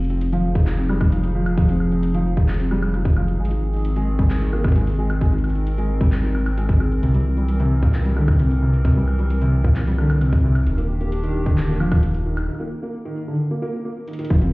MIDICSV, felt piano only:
0, 0, Header, 1, 2, 480
1, 0, Start_track
1, 0, Tempo, 454545
1, 1664, Time_signature, 4, 2, 24, 8
1, 15344, End_track
2, 0, Start_track
2, 0, Title_t, "Felt piano"
2, 0, Program_c, 0, 0
2, 105, Note_on_c, 0, 60, 73
2, 206, Note_off_c, 0, 60, 0
2, 344, Note_on_c, 0, 53, 100
2, 445, Note_off_c, 0, 53, 0
2, 583, Note_on_c, 0, 51, 73
2, 645, Note_off_c, 0, 51, 0
2, 824, Note_on_c, 0, 60, 74
2, 885, Note_off_c, 0, 60, 0
2, 943, Note_on_c, 0, 55, 96
2, 1045, Note_off_c, 0, 55, 0
2, 1184, Note_on_c, 0, 53, 79
2, 1245, Note_off_c, 0, 53, 0
2, 1423, Note_on_c, 0, 53, 98
2, 1525, Note_off_c, 0, 53, 0
2, 1664, Note_on_c, 0, 53, 84
2, 1765, Note_off_c, 0, 53, 0
2, 1783, Note_on_c, 0, 60, 73
2, 1845, Note_off_c, 0, 60, 0
2, 2024, Note_on_c, 0, 60, 73
2, 2125, Note_off_c, 0, 60, 0
2, 2263, Note_on_c, 0, 53, 100
2, 2365, Note_off_c, 0, 53, 0
2, 2504, Note_on_c, 0, 51, 74
2, 2565, Note_off_c, 0, 51, 0
2, 2743, Note_on_c, 0, 60, 75
2, 2805, Note_off_c, 0, 60, 0
2, 2863, Note_on_c, 0, 55, 101
2, 2965, Note_off_c, 0, 55, 0
2, 3103, Note_on_c, 0, 53, 83
2, 3165, Note_off_c, 0, 53, 0
2, 3344, Note_on_c, 0, 53, 99
2, 3445, Note_off_c, 0, 53, 0
2, 3584, Note_on_c, 0, 56, 84
2, 3685, Note_off_c, 0, 56, 0
2, 3704, Note_on_c, 0, 63, 73
2, 3765, Note_off_c, 0, 63, 0
2, 3944, Note_on_c, 0, 63, 76
2, 4045, Note_off_c, 0, 63, 0
2, 4184, Note_on_c, 0, 56, 101
2, 4285, Note_off_c, 0, 56, 0
2, 4425, Note_on_c, 0, 55, 73
2, 4485, Note_off_c, 0, 55, 0
2, 4664, Note_on_c, 0, 63, 72
2, 4725, Note_off_c, 0, 63, 0
2, 4784, Note_on_c, 0, 58, 97
2, 4886, Note_off_c, 0, 58, 0
2, 5024, Note_on_c, 0, 56, 78
2, 5085, Note_off_c, 0, 56, 0
2, 5264, Note_on_c, 0, 56, 98
2, 5365, Note_off_c, 0, 56, 0
2, 5503, Note_on_c, 0, 56, 84
2, 5605, Note_off_c, 0, 56, 0
2, 5623, Note_on_c, 0, 63, 75
2, 5685, Note_off_c, 0, 63, 0
2, 5863, Note_on_c, 0, 63, 73
2, 5965, Note_off_c, 0, 63, 0
2, 6104, Note_on_c, 0, 56, 102
2, 6205, Note_off_c, 0, 56, 0
2, 6344, Note_on_c, 0, 55, 74
2, 6405, Note_off_c, 0, 55, 0
2, 6584, Note_on_c, 0, 63, 76
2, 6645, Note_off_c, 0, 63, 0
2, 6704, Note_on_c, 0, 44, 74
2, 6818, Note_off_c, 0, 44, 0
2, 6943, Note_on_c, 0, 56, 80
2, 7045, Note_off_c, 0, 56, 0
2, 7183, Note_on_c, 0, 68, 73
2, 7298, Note_off_c, 0, 68, 0
2, 7424, Note_on_c, 0, 48, 85
2, 7525, Note_off_c, 0, 48, 0
2, 7544, Note_on_c, 0, 55, 76
2, 7605, Note_off_c, 0, 55, 0
2, 7783, Note_on_c, 0, 55, 78
2, 7885, Note_off_c, 0, 55, 0
2, 8024, Note_on_c, 0, 48, 99
2, 8125, Note_off_c, 0, 48, 0
2, 8264, Note_on_c, 0, 46, 74
2, 8325, Note_off_c, 0, 46, 0
2, 8503, Note_on_c, 0, 55, 74
2, 8565, Note_off_c, 0, 55, 0
2, 8624, Note_on_c, 0, 50, 101
2, 8725, Note_off_c, 0, 50, 0
2, 8864, Note_on_c, 0, 48, 82
2, 8925, Note_off_c, 0, 48, 0
2, 9104, Note_on_c, 0, 48, 95
2, 9205, Note_off_c, 0, 48, 0
2, 9344, Note_on_c, 0, 48, 88
2, 9446, Note_off_c, 0, 48, 0
2, 9465, Note_on_c, 0, 55, 73
2, 9525, Note_off_c, 0, 55, 0
2, 9704, Note_on_c, 0, 55, 76
2, 9805, Note_off_c, 0, 55, 0
2, 9944, Note_on_c, 0, 48, 100
2, 10046, Note_off_c, 0, 48, 0
2, 10184, Note_on_c, 0, 46, 72
2, 10245, Note_off_c, 0, 46, 0
2, 10424, Note_on_c, 0, 55, 77
2, 10485, Note_off_c, 0, 55, 0
2, 10544, Note_on_c, 0, 50, 99
2, 10646, Note_off_c, 0, 50, 0
2, 10784, Note_on_c, 0, 48, 80
2, 10845, Note_off_c, 0, 48, 0
2, 11023, Note_on_c, 0, 48, 95
2, 11125, Note_off_c, 0, 48, 0
2, 11264, Note_on_c, 0, 51, 82
2, 11366, Note_off_c, 0, 51, 0
2, 11384, Note_on_c, 0, 58, 71
2, 11445, Note_off_c, 0, 58, 0
2, 11624, Note_on_c, 0, 58, 76
2, 11726, Note_off_c, 0, 58, 0
2, 11864, Note_on_c, 0, 51, 100
2, 11965, Note_off_c, 0, 51, 0
2, 12104, Note_on_c, 0, 50, 73
2, 12165, Note_off_c, 0, 50, 0
2, 12344, Note_on_c, 0, 58, 78
2, 12405, Note_off_c, 0, 58, 0
2, 12464, Note_on_c, 0, 53, 102
2, 12566, Note_off_c, 0, 53, 0
2, 12704, Note_on_c, 0, 51, 84
2, 12765, Note_off_c, 0, 51, 0
2, 12944, Note_on_c, 0, 51, 98
2, 13045, Note_off_c, 0, 51, 0
2, 13184, Note_on_c, 0, 51, 86
2, 13285, Note_off_c, 0, 51, 0
2, 13304, Note_on_c, 0, 58, 72
2, 13365, Note_off_c, 0, 58, 0
2, 13544, Note_on_c, 0, 58, 78
2, 13646, Note_off_c, 0, 58, 0
2, 13784, Note_on_c, 0, 51, 103
2, 13886, Note_off_c, 0, 51, 0
2, 14025, Note_on_c, 0, 50, 76
2, 14085, Note_off_c, 0, 50, 0
2, 14265, Note_on_c, 0, 58, 75
2, 14325, Note_off_c, 0, 58, 0
2, 14384, Note_on_c, 0, 58, 100
2, 14486, Note_off_c, 0, 58, 0
2, 14624, Note_on_c, 0, 58, 79
2, 14685, Note_off_c, 0, 58, 0
2, 14865, Note_on_c, 0, 51, 75
2, 14968, Note_off_c, 0, 51, 0
2, 14984, Note_on_c, 0, 51, 102
2, 15098, Note_off_c, 0, 51, 0
2, 15105, Note_on_c, 0, 53, 85
2, 15206, Note_off_c, 0, 53, 0
2, 15224, Note_on_c, 0, 60, 73
2, 15285, Note_off_c, 0, 60, 0
2, 15344, End_track
0, 0, End_of_file